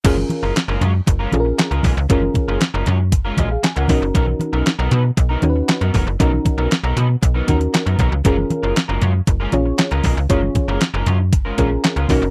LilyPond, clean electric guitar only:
\new Staff \with { instrumentName = "Clean electric guitar" } { \time 4/4 \key fis \major \tempo 4 = 117 <gis cis' eis' ais'>16 r8 <gis cis' eis' ais'>16 r16 <gis cis' eis' ais'>16 <gis cis' eis' cis''>16 r8 <gis cis' eis' ais'>16 r8. <gis cis' eis' ais'>16 <gis cis' eis' ais'>16 r16 | <gis cis' eis' ais'>16 r8 <gis cis' eis' ais'>16 r16 <gis cis' eis' ais'>16 <gis cis' eis' cis''>16 r8 <gis cis' eis' ais'>16 <gis cis' eis' ais'>16 r8 <gis cis' eis' ais'>16 <fis b dis' ais'>16 r16 | <fis b dis' ais'>16 r8 <fis b dis' ais'>16 r16 <fis b dis' ais'>16 <fis b dis' b'>16 r8 <fis b dis' ais'>16 r8. <fis b dis' ais'>16 <fis b dis' ais'>16 r16 | <fis b dis' ais'>16 r8 <fis b dis' ais'>16 r16 <fis b dis' ais'>16 <fis b dis' b'>16 r8 <fis b dis' ais'>16 <fis b dis' ais'>16 r8 <fis b dis' ais'>16 <fis b dis' ais'>16 r16 |
<gis cis' eis' ais'>16 r8 <gis cis' eis' ais'>16 r16 <gis cis' eis' ais'>16 <gis cis' eis' cis''>16 r8 <gis cis' eis' ais'>16 r8. <gis cis' eis' ais'>16 <gis cis' eis' ais'>16 r16 | <gis cis' eis' ais'>16 r8 <gis cis' eis' ais'>16 r16 <gis cis' eis' ais'>16 <gis cis' eis' cis''>16 r8 <gis cis' eis' ais'>16 <gis cis' eis' ais'>16 r8 <gis cis' eis' ais'>16 <ais dis' fis' ais'>16 r16 | }